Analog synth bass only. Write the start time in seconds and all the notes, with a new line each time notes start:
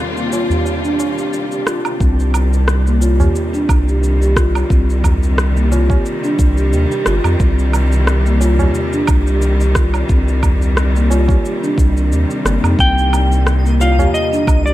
2.00 C2
3.69 C2
4.70 C2
6.39 C2
6.73 D#2
7.07 G1
7.25 F2
7.40 C2
9.08 C2
10.09 C2
11.78 C2
12.12 D#2
12.45 G1
12.64 F2
12.79 C2
14.48 C2